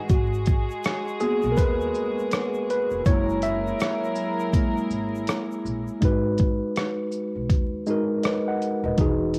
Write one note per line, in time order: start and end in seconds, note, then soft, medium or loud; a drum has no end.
0.00 3.01 F#4 medium
0.09 0.61 G#1 loud
0.09 3.03 G#3 medium
0.09 1.21 F#4 medium
0.09 3.03 G#4 medium
0.09 kick loud
0.09 closed hi-hat medium
0.09 shaker medium
0.34 shaker soft
0.46 closed hi-hat soft
0.46 shaker soft
0.47 kick loud
0.47 shaker medium
0.70 shaker medium
0.83 cross-stick loud
0.83 closed hi-hat medium
0.83 shaker medium
1.08 shaker soft
1.20 1.73 A#3 medium
1.20 1.73 B3 medium
1.20 1.73 F#4 medium
1.20 1.53 G#4 loud
1.20 shaker soft
1.42 1.58 B1 loud
1.42 shaker medium
1.52 1.57 A#4 medium
1.57 1.90 D#2 medium
1.57 2.27 B4 loud
1.57 kick medium
1.57 closed hi-hat medium
1.57 shaker medium
1.81 shaker medium
1.95 shaker soft
2.19 shaker soft
2.31 cross-stick loud
2.31 closed hi-hat medium
2.31 shaker medium
2.54 shaker soft
2.70 3.07 B4 medium
2.70 closed hi-hat soft
2.70 shaker soft
2.90 3.04 F1 medium
2.90 shaker medium
3.05 3.70 F#1 loud
3.05 5.99 F#3 medium
3.05 4.13 G#3 medium
3.05 4.13 A#3 soft
3.05 5.99 E4 medium
3.05 4.13 E4 medium
3.05 5.99 G#4 medium
3.05 5.99 A#4 medium
3.05 3.44 C#5 loud
3.05 kick loud
3.05 closed hi-hat medium
3.05 shaker medium
3.29 shaker soft
3.42 4.87 E5 loud
3.42 closed hi-hat soft
3.42 shaker soft
3.44 shaker soft
3.67 shaker soft
3.80 cross-stick medium
3.80 closed hi-hat medium
3.80 shaker medium
4.04 shaker medium
4.16 shaker soft
4.40 shaker medium
4.53 4.87 G#3 medium
4.53 4.87 A#3 soft
4.53 4.88 E4 medium
4.53 kick medium
4.53 closed hi-hat medium
4.53 shaker medium
4.76 muted upright bass stroke soft
4.76 shaker medium
4.91 5.23 G#1 medium
4.91 shaker soft
5.15 shaker medium
5.27 cross-stick loud
5.27 closed hi-hat medium
5.27 shaker medium
5.52 shaker soft
5.65 5.85 A#1 medium
5.65 shaker soft
5.88 shaker soft
6.01 6.54 G#1 loud
6.01 7.43 G#3 medium
6.01 7.43 D#4 medium
6.01 7.44 F#4 medium
6.01 kick loud
6.01 closed hi-hat medium
6.05 7.45 B4 medium
6.38 kick medium
6.38 closed hi-hat soft
6.38 shaker soft
6.76 cross-stick medium
6.76 closed hi-hat medium
7.12 shaker soft
7.35 7.51 B1 medium
7.50 7.82 D#2 medium
7.50 kick medium
7.50 closed hi-hat medium
7.86 8.93 G#3 medium
7.86 8.93 D#4 medium
7.86 8.94 F#4 medium
7.86 shaker soft
7.91 8.26 A#4 medium
8.23 8.46 B4 medium
8.23 8.45 D#5 medium
8.23 cross-stick loud
8.23 closed hi-hat medium
8.48 8.83 D#5 medium
8.48 8.82 F#5 medium
8.62 closed hi-hat soft
8.62 shaker soft
8.84 8.96 D#1 loud
8.84 9.20 B4 soft
8.84 9.20 D#5 medium
8.97 9.39 E1 loud
8.97 9.39 E3 medium
8.97 9.39 D#4 medium
8.97 9.39 F#4 medium
8.97 9.39 G#4 medium
8.97 kick loud
8.97 closed hi-hat medium
9.34 closed hi-hat soft
9.34 shaker soft